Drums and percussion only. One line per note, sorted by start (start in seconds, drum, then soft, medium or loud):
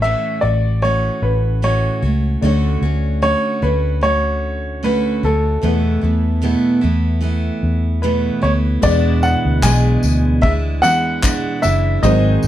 8.83 kick loud
8.83 tambourine soft
9.23 tambourine medium
9.63 kick loud
9.63 clap loud
9.63 tambourine medium
10.03 tambourine medium
10.03 tambourine soft
10.43 kick loud
10.83 tambourine medium
11.23 kick loud
11.23 clap loud
11.23 tambourine medium
11.63 tambourine medium
11.63 tambourine soft
12.03 kick loud
12.03 tambourine soft
12.43 tambourine medium